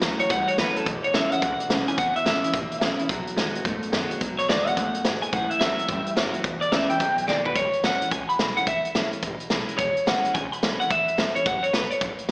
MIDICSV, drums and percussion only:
0, 0, Header, 1, 2, 480
1, 0, Start_track
1, 0, Key_signature, 4, "major"
1, 0, Tempo, 278940
1, 1478, Time_signature, 4, 2, 24, 8
1, 21185, End_track
2, 0, Start_track
2, 0, Title_t, "Drums"
2, 26, Note_on_c, 9, 38, 112
2, 26, Note_on_c, 9, 42, 94
2, 198, Note_off_c, 9, 38, 0
2, 198, Note_off_c, 9, 42, 0
2, 335, Note_on_c, 9, 42, 66
2, 507, Note_off_c, 9, 42, 0
2, 516, Note_on_c, 9, 42, 90
2, 518, Note_on_c, 9, 36, 103
2, 688, Note_off_c, 9, 42, 0
2, 691, Note_off_c, 9, 36, 0
2, 827, Note_on_c, 9, 42, 65
2, 999, Note_off_c, 9, 42, 0
2, 1000, Note_on_c, 9, 38, 106
2, 1000, Note_on_c, 9, 42, 88
2, 1172, Note_off_c, 9, 38, 0
2, 1172, Note_off_c, 9, 42, 0
2, 1310, Note_on_c, 9, 42, 60
2, 1482, Note_off_c, 9, 42, 0
2, 1486, Note_on_c, 9, 42, 85
2, 1487, Note_on_c, 9, 36, 110
2, 1658, Note_off_c, 9, 42, 0
2, 1659, Note_off_c, 9, 36, 0
2, 1788, Note_on_c, 9, 42, 53
2, 1960, Note_off_c, 9, 42, 0
2, 1963, Note_on_c, 9, 38, 118
2, 1963, Note_on_c, 9, 42, 82
2, 2135, Note_off_c, 9, 38, 0
2, 2135, Note_off_c, 9, 42, 0
2, 2266, Note_on_c, 9, 42, 64
2, 2438, Note_off_c, 9, 42, 0
2, 2445, Note_on_c, 9, 42, 83
2, 2446, Note_on_c, 9, 36, 108
2, 2617, Note_off_c, 9, 42, 0
2, 2618, Note_off_c, 9, 36, 0
2, 2752, Note_on_c, 9, 42, 61
2, 2924, Note_off_c, 9, 42, 0
2, 2926, Note_on_c, 9, 38, 123
2, 2926, Note_on_c, 9, 42, 82
2, 3098, Note_off_c, 9, 38, 0
2, 3098, Note_off_c, 9, 42, 0
2, 3233, Note_on_c, 9, 42, 65
2, 3404, Note_off_c, 9, 42, 0
2, 3404, Note_on_c, 9, 42, 86
2, 3405, Note_on_c, 9, 36, 115
2, 3576, Note_off_c, 9, 42, 0
2, 3577, Note_off_c, 9, 36, 0
2, 3715, Note_on_c, 9, 42, 61
2, 3887, Note_off_c, 9, 42, 0
2, 3890, Note_on_c, 9, 38, 109
2, 3890, Note_on_c, 9, 42, 89
2, 4062, Note_off_c, 9, 38, 0
2, 4062, Note_off_c, 9, 42, 0
2, 4197, Note_on_c, 9, 42, 67
2, 4364, Note_on_c, 9, 36, 116
2, 4366, Note_off_c, 9, 42, 0
2, 4366, Note_on_c, 9, 42, 90
2, 4536, Note_off_c, 9, 36, 0
2, 4538, Note_off_c, 9, 42, 0
2, 4671, Note_on_c, 9, 42, 65
2, 4842, Note_off_c, 9, 42, 0
2, 4842, Note_on_c, 9, 38, 119
2, 4842, Note_on_c, 9, 42, 85
2, 5014, Note_off_c, 9, 38, 0
2, 5014, Note_off_c, 9, 42, 0
2, 5147, Note_on_c, 9, 42, 60
2, 5319, Note_off_c, 9, 42, 0
2, 5323, Note_on_c, 9, 36, 115
2, 5330, Note_on_c, 9, 42, 84
2, 5495, Note_off_c, 9, 36, 0
2, 5502, Note_off_c, 9, 42, 0
2, 5630, Note_on_c, 9, 42, 58
2, 5802, Note_off_c, 9, 42, 0
2, 5808, Note_on_c, 9, 38, 112
2, 5808, Note_on_c, 9, 42, 83
2, 5980, Note_off_c, 9, 38, 0
2, 5980, Note_off_c, 9, 42, 0
2, 6112, Note_on_c, 9, 42, 62
2, 6282, Note_on_c, 9, 36, 106
2, 6283, Note_off_c, 9, 42, 0
2, 6283, Note_on_c, 9, 42, 81
2, 6455, Note_off_c, 9, 36, 0
2, 6455, Note_off_c, 9, 42, 0
2, 6583, Note_on_c, 9, 42, 62
2, 6755, Note_off_c, 9, 42, 0
2, 6759, Note_on_c, 9, 38, 115
2, 6759, Note_on_c, 9, 42, 84
2, 6931, Note_off_c, 9, 38, 0
2, 6931, Note_off_c, 9, 42, 0
2, 7069, Note_on_c, 9, 42, 60
2, 7241, Note_off_c, 9, 42, 0
2, 7242, Note_on_c, 9, 42, 90
2, 7246, Note_on_c, 9, 36, 118
2, 7414, Note_off_c, 9, 42, 0
2, 7418, Note_off_c, 9, 36, 0
2, 7551, Note_on_c, 9, 42, 58
2, 7723, Note_off_c, 9, 42, 0
2, 7733, Note_on_c, 9, 38, 116
2, 7733, Note_on_c, 9, 42, 88
2, 7905, Note_off_c, 9, 38, 0
2, 7905, Note_off_c, 9, 42, 0
2, 8034, Note_on_c, 9, 42, 66
2, 8206, Note_off_c, 9, 42, 0
2, 8207, Note_on_c, 9, 42, 86
2, 8209, Note_on_c, 9, 36, 102
2, 8379, Note_off_c, 9, 42, 0
2, 8381, Note_off_c, 9, 36, 0
2, 8507, Note_on_c, 9, 42, 67
2, 8679, Note_off_c, 9, 42, 0
2, 8684, Note_on_c, 9, 38, 114
2, 8684, Note_on_c, 9, 42, 87
2, 8856, Note_off_c, 9, 38, 0
2, 8856, Note_off_c, 9, 42, 0
2, 8993, Note_on_c, 9, 42, 64
2, 9165, Note_off_c, 9, 42, 0
2, 9168, Note_on_c, 9, 42, 90
2, 9169, Note_on_c, 9, 36, 110
2, 9341, Note_off_c, 9, 36, 0
2, 9341, Note_off_c, 9, 42, 0
2, 9474, Note_on_c, 9, 42, 61
2, 9646, Note_off_c, 9, 42, 0
2, 9649, Note_on_c, 9, 38, 117
2, 9649, Note_on_c, 9, 42, 89
2, 9821, Note_off_c, 9, 38, 0
2, 9821, Note_off_c, 9, 42, 0
2, 9962, Note_on_c, 9, 42, 61
2, 10128, Note_on_c, 9, 36, 107
2, 10132, Note_off_c, 9, 42, 0
2, 10132, Note_on_c, 9, 42, 73
2, 10300, Note_off_c, 9, 36, 0
2, 10304, Note_off_c, 9, 42, 0
2, 10435, Note_on_c, 9, 42, 63
2, 10607, Note_off_c, 9, 42, 0
2, 10611, Note_on_c, 9, 38, 121
2, 10611, Note_on_c, 9, 42, 85
2, 10783, Note_off_c, 9, 38, 0
2, 10783, Note_off_c, 9, 42, 0
2, 10907, Note_on_c, 9, 42, 61
2, 11079, Note_off_c, 9, 42, 0
2, 11083, Note_on_c, 9, 42, 83
2, 11085, Note_on_c, 9, 36, 114
2, 11255, Note_off_c, 9, 42, 0
2, 11257, Note_off_c, 9, 36, 0
2, 11390, Note_on_c, 9, 42, 56
2, 11563, Note_off_c, 9, 42, 0
2, 11565, Note_on_c, 9, 38, 119
2, 11565, Note_on_c, 9, 42, 84
2, 11738, Note_off_c, 9, 38, 0
2, 11738, Note_off_c, 9, 42, 0
2, 11869, Note_on_c, 9, 42, 66
2, 12041, Note_off_c, 9, 42, 0
2, 12047, Note_on_c, 9, 36, 102
2, 12049, Note_on_c, 9, 42, 81
2, 12219, Note_off_c, 9, 36, 0
2, 12221, Note_off_c, 9, 42, 0
2, 12352, Note_on_c, 9, 42, 67
2, 12523, Note_on_c, 9, 38, 66
2, 12524, Note_off_c, 9, 42, 0
2, 12695, Note_off_c, 9, 38, 0
2, 12827, Note_on_c, 9, 43, 89
2, 12996, Note_on_c, 9, 42, 92
2, 12999, Note_off_c, 9, 43, 0
2, 13002, Note_on_c, 9, 36, 115
2, 13168, Note_off_c, 9, 42, 0
2, 13174, Note_off_c, 9, 36, 0
2, 13306, Note_on_c, 9, 42, 58
2, 13478, Note_off_c, 9, 42, 0
2, 13486, Note_on_c, 9, 38, 110
2, 13486, Note_on_c, 9, 42, 88
2, 13658, Note_off_c, 9, 38, 0
2, 13658, Note_off_c, 9, 42, 0
2, 13793, Note_on_c, 9, 42, 66
2, 13963, Note_on_c, 9, 36, 111
2, 13964, Note_off_c, 9, 42, 0
2, 13964, Note_on_c, 9, 42, 80
2, 14136, Note_off_c, 9, 36, 0
2, 14136, Note_off_c, 9, 42, 0
2, 14271, Note_on_c, 9, 42, 57
2, 14440, Note_off_c, 9, 42, 0
2, 14440, Note_on_c, 9, 38, 114
2, 14440, Note_on_c, 9, 42, 81
2, 14612, Note_off_c, 9, 38, 0
2, 14612, Note_off_c, 9, 42, 0
2, 14746, Note_on_c, 9, 42, 59
2, 14912, Note_off_c, 9, 42, 0
2, 14912, Note_on_c, 9, 42, 80
2, 14917, Note_on_c, 9, 36, 116
2, 15084, Note_off_c, 9, 42, 0
2, 15090, Note_off_c, 9, 36, 0
2, 15225, Note_on_c, 9, 42, 59
2, 15397, Note_off_c, 9, 42, 0
2, 15401, Note_on_c, 9, 38, 111
2, 15401, Note_on_c, 9, 42, 89
2, 15573, Note_off_c, 9, 38, 0
2, 15573, Note_off_c, 9, 42, 0
2, 15704, Note_on_c, 9, 42, 67
2, 15873, Note_off_c, 9, 42, 0
2, 15873, Note_on_c, 9, 42, 90
2, 15877, Note_on_c, 9, 36, 109
2, 16045, Note_off_c, 9, 42, 0
2, 16049, Note_off_c, 9, 36, 0
2, 16174, Note_on_c, 9, 42, 68
2, 16346, Note_off_c, 9, 42, 0
2, 16349, Note_on_c, 9, 38, 112
2, 16349, Note_on_c, 9, 42, 89
2, 16521, Note_off_c, 9, 38, 0
2, 16521, Note_off_c, 9, 42, 0
2, 16666, Note_on_c, 9, 42, 64
2, 16838, Note_off_c, 9, 42, 0
2, 16842, Note_on_c, 9, 36, 113
2, 16844, Note_on_c, 9, 42, 90
2, 17014, Note_off_c, 9, 36, 0
2, 17016, Note_off_c, 9, 42, 0
2, 17150, Note_on_c, 9, 42, 59
2, 17322, Note_off_c, 9, 42, 0
2, 17331, Note_on_c, 9, 38, 115
2, 17331, Note_on_c, 9, 42, 91
2, 17503, Note_off_c, 9, 38, 0
2, 17503, Note_off_c, 9, 42, 0
2, 17631, Note_on_c, 9, 42, 69
2, 17803, Note_off_c, 9, 42, 0
2, 17807, Note_on_c, 9, 36, 101
2, 17811, Note_on_c, 9, 42, 77
2, 17979, Note_off_c, 9, 36, 0
2, 17983, Note_off_c, 9, 42, 0
2, 18118, Note_on_c, 9, 42, 61
2, 18289, Note_off_c, 9, 42, 0
2, 18289, Note_on_c, 9, 38, 117
2, 18289, Note_on_c, 9, 42, 81
2, 18461, Note_off_c, 9, 38, 0
2, 18461, Note_off_c, 9, 42, 0
2, 18601, Note_on_c, 9, 42, 58
2, 18766, Note_off_c, 9, 42, 0
2, 18766, Note_on_c, 9, 36, 113
2, 18766, Note_on_c, 9, 42, 84
2, 18938, Note_off_c, 9, 36, 0
2, 18938, Note_off_c, 9, 42, 0
2, 19069, Note_on_c, 9, 42, 59
2, 19241, Note_off_c, 9, 42, 0
2, 19241, Note_on_c, 9, 38, 112
2, 19241, Note_on_c, 9, 42, 84
2, 19413, Note_off_c, 9, 38, 0
2, 19413, Note_off_c, 9, 42, 0
2, 19545, Note_on_c, 9, 42, 61
2, 19717, Note_off_c, 9, 42, 0
2, 19719, Note_on_c, 9, 36, 113
2, 19724, Note_on_c, 9, 42, 78
2, 19891, Note_off_c, 9, 36, 0
2, 19896, Note_off_c, 9, 42, 0
2, 20022, Note_on_c, 9, 42, 61
2, 20194, Note_off_c, 9, 42, 0
2, 20194, Note_on_c, 9, 38, 112
2, 20194, Note_on_c, 9, 42, 91
2, 20366, Note_off_c, 9, 38, 0
2, 20366, Note_off_c, 9, 42, 0
2, 20496, Note_on_c, 9, 42, 68
2, 20668, Note_off_c, 9, 42, 0
2, 20670, Note_on_c, 9, 36, 117
2, 20670, Note_on_c, 9, 42, 90
2, 20842, Note_off_c, 9, 36, 0
2, 20842, Note_off_c, 9, 42, 0
2, 20968, Note_on_c, 9, 42, 61
2, 21140, Note_off_c, 9, 42, 0
2, 21185, End_track
0, 0, End_of_file